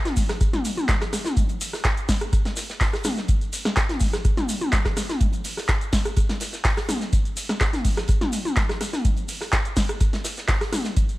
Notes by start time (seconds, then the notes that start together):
0.05 snare, closed hi-hat, mid tom, shekere
0.16 kick, closed hi-hat, open hi-hat, ride, shekere
0.29 cross-stick, snare, closed hi-hat, shekere
0.41 kick, cross-stick, closed hi-hat, shekere
0.53 snare, closed hi-hat, mid tom, shekere
0.65 closed hi-hat, open hi-hat, ride, shekere
0.77 closed hi-hat, mid tom, shekere
0.88 kick, snare, clap, closed hi-hat, shekere
1.01 cross-stick, snare, closed hi-hat, shekere
1.13 cross-stick, snare, closed hi-hat, open hi-hat, ride, shekere
1.25 snare, closed hi-hat, mid tom, shekere
1.37 kick, closed hi-hat, shekere
1.49 closed hi-hat, shekere
1.61 closed hi-hat, open hi-hat, ride, shekere
1.73 cross-stick, snare, shekere
1.84 kick, cross-stick, snare, clap, closed hi-hat, shekere
1.97 closed hi-hat, shekere
2.09 kick, snare, closed hi-hat, open hi-hat, ride, shekere
2.21 cross-stick, closed hi-hat, shekere
2.33 kick, cross-stick, closed hi-hat, shekere
2.45 snare, closed hi-hat, shekere
2.56 snare, closed hi-hat, open hi-hat, ride, shekere
2.69 snare, closed hi-hat, shekere
2.80 kick, snare, clap, closed hi-hat, open hi-hat, shekere
2.93 cross-stick, snare, closed hi-hat, shekere
3.04 cross-stick, snare, closed hi-hat, open hi-hat, mid tom, ride, shekere
3.17 snare, closed hi-hat, shekere
3.28 kick, closed hi-hat, shekere
3.41 closed hi-hat, shekere
3.53 closed hi-hat, open hi-hat, ride, shekere
3.65 cross-stick, snare, closed hi-hat, shekere
3.76 kick, cross-stick, snare, clap, closed hi-hat, shekere
3.89 snare, closed hi-hat, mid tom, shekere
4.00 kick, closed hi-hat, open hi-hat, ride, shekere
4.13 cross-stick, snare, closed hi-hat, shekere
4.24 kick, cross-stick, closed hi-hat, shekere
4.37 snare, closed hi-hat, mid tom, shekere
4.49 closed hi-hat, open hi-hat, ride, shekere
4.61 closed hi-hat, mid tom, shekere
4.72 kick, snare, clap, closed hi-hat, shekere
4.85 kick, cross-stick, snare, closed hi-hat, shekere
4.97 cross-stick, snare, closed hi-hat, open hi-hat, ride, shekere
5.09 snare, closed hi-hat, mid tom, shekere
5.21 kick, closed hi-hat, shekere
5.33 closed hi-hat, shekere
5.44 closed hi-hat, open hi-hat, ride, shekere
5.57 cross-stick, snare, shekere
5.68 kick, cross-stick, snare, clap, closed hi-hat, shekere
5.81 closed hi-hat, shekere
5.92 kick, snare, closed hi-hat, open hi-hat, ride, shekere
6.05 cross-stick, closed hi-hat, shekere
6.16 kick, cross-stick, closed hi-hat, shekere
6.29 snare, closed hi-hat, shekere
6.40 snare, closed hi-hat, open hi-hat, ride, shekere
6.53 snare, closed hi-hat, shekere
6.64 kick, snare, clap, closed hi-hat, open hi-hat, shekere
6.77 cross-stick, snare, closed hi-hat, shekere
6.89 cross-stick, snare, closed hi-hat, open hi-hat, mid tom, ride, shekere
7.01 snare, closed hi-hat, shekere
7.13 kick, closed hi-hat, shekere
7.25 closed hi-hat, shekere
7.37 closed hi-hat, open hi-hat, ride, shekere
7.49 cross-stick, snare, closed hi-hat, shekere
7.61 kick, cross-stick, snare, clap, closed hi-hat, shekere
7.73 snare, closed hi-hat, mid tom, shekere
7.85 kick, closed hi-hat, open hi-hat, ride, shekere
7.97 cross-stick, snare, closed hi-hat, shekere
8.08 kick, cross-stick, closed hi-hat, shekere
8.21 snare, closed hi-hat, mid tom, shekere
8.33 closed hi-hat, open hi-hat, ride, shekere
8.45 closed hi-hat, mid tom, shekere
8.56 kick, snare, clap, closed hi-hat, shekere
8.69 cross-stick, snare, closed hi-hat, shekere
8.81 cross-stick, snare, closed hi-hat, open hi-hat, ride, shekere
8.93 snare, closed hi-hat, mid tom, shekere
9.05 kick, closed hi-hat, shekere
9.17 closed hi-hat, shekere
9.28 closed hi-hat, open hi-hat, ride, shekere
9.41 cross-stick, snare, shekere
9.52 kick, cross-stick, snare, clap, closed hi-hat, shekere
9.65 closed hi-hat, shekere
9.76 kick, snare, closed hi-hat, open hi-hat, ride, shekere
9.89 cross-stick, closed hi-hat, shekere
10.00 kick, cross-stick, closed hi-hat, shekere
10.13 snare, closed hi-hat, shekere
10.24 snare, closed hi-hat, open hi-hat, ride, shekere
10.37 snare, closed hi-hat, shekere
10.48 kick, snare, clap, closed hi-hat, open hi-hat, shekere
10.61 cross-stick, snare, closed hi-hat, shekere
10.73 cross-stick, snare, closed hi-hat, open hi-hat, mid tom, ride, shekere
10.85 snare, closed hi-hat, shekere
10.97 kick, closed hi-hat, shekere
11.09 closed hi-hat, shekere